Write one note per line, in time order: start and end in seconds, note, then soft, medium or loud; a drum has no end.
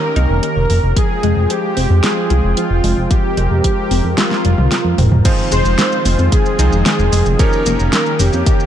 0.00 0.11 D#3 medium
0.00 0.94 D#3 medium
0.00 0.94 A#3 medium
0.00 0.94 C#4 medium
0.00 0.94 G4 medium
0.00 0.42 A#4 medium
0.00 0.94 A#4 loud
0.16 0.27 C2 medium
0.16 0.38 D#4 loud
0.16 closed hi-hat medium
0.30 0.40 F1 medium
0.43 0.56 D#3 medium
0.43 0.93 A#4 loud
0.43 closed hi-hat medium
0.56 0.67 F1 medium
0.70 0.80 F1 medium
0.70 0.91 A#3 medium
0.70 open hi-hat medium
0.83 0.94 F1 medium
0.96 5.21 F3 medium
0.96 1.09 F3 medium
0.96 5.21 G#3 medium
0.96 5.21 C4 medium
0.96 3.09 F4 medium
0.96 1.52 G#4 medium
0.96 5.21 G5 medium
0.96 kick loud
0.96 closed hi-hat medium
1.23 1.34 F1 medium
1.23 1.36 G#3 loud
1.23 closed hi-hat medium
1.37 1.47 F1 medium
1.50 1.76 F3 medium
1.50 2.05 G4 medium
1.50 closed hi-hat medium
1.77 1.87 F1 medium
1.77 1.98 C4 medium
1.77 open hi-hat medium
1.90 2.01 F2 medium
2.04 2.25 F3 medium
2.04 2.59 G#4 medium
2.04 snare loud
2.04 closed hi-hat medium
2.30 2.41 C2 medium
2.30 2.52 F4 loud
2.30 closed hi-hat medium
2.44 2.54 F1 medium
2.57 2.70 F3 medium
2.57 3.13 F4 medium
2.57 closed hi-hat medium
2.71 2.81 F1 medium
2.84 2.94 F1 medium
2.84 3.05 G#3 medium
2.84 open hi-hat medium
2.97 3.08 F1 medium
3.11 3.24 F3 medium
3.11 3.63 G4 medium
3.11 5.23 A#4 medium
3.11 kick loud
3.11 closed hi-hat medium
3.37 3.48 F1 medium
3.37 3.50 G#3 medium
3.37 closed hi-hat medium
3.51 3.61 F1 medium
3.64 3.90 F3 medium
3.64 4.20 G4 medium
3.64 kick medium
3.64 closed hi-hat medium
3.91 4.02 F1 medium
3.91 4.13 C4 medium
3.91 open hi-hat medium
4.05 4.15 F2 medium
4.18 4.39 F3 medium
4.18 4.94 F4 medium
4.18 snare loud
4.18 closed hi-hat medium
4.18 high tom medium
4.31 snare medium
4.45 4.55 F1 medium
4.45 4.70 G3 medium
4.45 closed hi-hat medium
4.58 4.69 C2 medium
4.58 mid tom medium
4.71 4.93 C4 medium
4.71 snare medium
4.71 closed hi-hat medium
4.85 4.95 F2 medium
4.98 5.09 F1 medium
4.98 5.24 C4 medium
4.98 mid tom loud
4.98 open hi-hat medium
5.12 5.22 F1 medium
5.12 mid tom medium
5.25 8.66 D#3 medium
5.25 5.38 D#3 medium
5.25 7.37 F3 medium
5.25 6.56 F3 medium
5.25 7.37 G#3 medium
5.25 7.37 C4 medium
5.25 6.56 C4 medium
5.25 6.56 D#4 medium
5.25 7.37 F4 loud
5.25 6.56 F4 medium
5.25 6.56 G#4 medium
5.25 6.56 C5 medium
5.25 kick loud
5.25 closed hi-hat loud
5.25 crash loud
5.25 shaker soft
5.38 shaker soft
5.52 5.62 F1 medium
5.52 5.65 G#3 loud
5.52 6.29 C5 loud
5.52 closed hi-hat medium
5.52 shaker medium
5.65 5.76 F1 medium
5.65 shaker soft
5.79 6.04 D#3 medium
5.79 snare loud
5.79 closed hi-hat medium
5.79 shaker soft
5.92 shaker soft
6.05 6.16 F1 medium
6.05 6.27 C4 medium
6.05 open hi-hat medium
6.05 shaker medium
6.19 6.29 F2 medium
6.19 shaker soft
6.32 6.54 D#3 medium
6.32 6.85 G#4 loud
6.32 kick loud
6.32 closed hi-hat loud
6.32 shaker soft
6.46 shaker soft
6.59 6.69 C2 medium
6.59 7.36 F3 medium
6.59 7.36 C4 medium
6.59 7.36 D#4 medium
6.59 6.80 D#4 loud
6.59 7.36 F4 medium
6.59 7.36 G#4 medium
6.59 7.36 C5 medium
6.59 closed hi-hat medium
6.59 shaker medium
6.72 6.83 F1 medium
6.72 shaker soft
6.86 6.99 D#3 medium
6.86 7.41 G#4 loud
6.86 snare loud
6.86 closed hi-hat medium
6.86 shaker soft
6.99 7.10 F1 medium
6.99 shaker soft
7.12 7.23 F1 loud
7.12 7.34 G#3 medium
7.12 open hi-hat medium
7.12 shaker medium
7.26 7.36 F1 medium
7.26 shaker soft
7.39 7.52 D#3 medium
7.39 8.66 F3 medium
7.39 8.66 A#3 medium
7.39 8.66 C#4 medium
7.39 8.66 D#4 medium
7.39 8.66 G4 medium
7.39 8.66 A#4 medium
7.39 7.92 A#4 loud
7.39 8.66 C#5 loud
7.39 8.66 G5 loud
7.39 kick loud
7.39 closed hi-hat loud
7.39 shaker soft
7.53 shaker soft
7.66 7.77 F1 medium
7.66 7.79 A#3 loud
7.66 closed hi-hat medium
7.66 shaker medium
7.79 7.90 F1 medium
7.79 shaker soft
7.93 8.18 D#3 medium
7.93 8.18 A#4 loud
7.93 snare loud
7.93 closed hi-hat medium
7.93 shaker soft
8.06 shaker soft
8.20 8.30 F1 medium
8.20 8.41 C#4 medium
8.20 8.66 G4 medium
8.20 open hi-hat medium
8.20 shaker medium
8.33 8.44 F2 medium
8.33 shaker soft
8.46 8.66 D#3 medium
8.46 kick loud
8.46 closed hi-hat loud
8.46 shaker soft
8.60 shaker soft